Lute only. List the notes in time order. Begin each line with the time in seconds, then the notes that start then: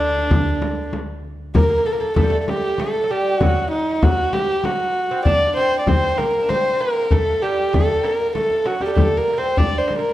Already playing: D3
1.55 A#3
1.63 A#3
1.70 A#3
1.78 A#3
1.85 A#3
1.93 A#3
2.00 A#3
2.16 A3
2.23 G3
2.30 A3
2.79 A3
3.03 F#3
3.10 G3
3.42 F#3
4.02 F#3
4.65 F#3
5.11 C4
5.26 D4
5.57 C4
5.88 C4
6.20 A#3
6.43 D4
6.49 C4
6.73 C4
6.80 A#3
7.11 A3
7.42 G3
7.73 A3
7.96 C4
8.03 A#3
8.35 A3
8.66 F#3
8.81 G3
8.95 A3
9.17 A#3
9.33 A#3
9.38 C4
9.58 D4
9.99 A#3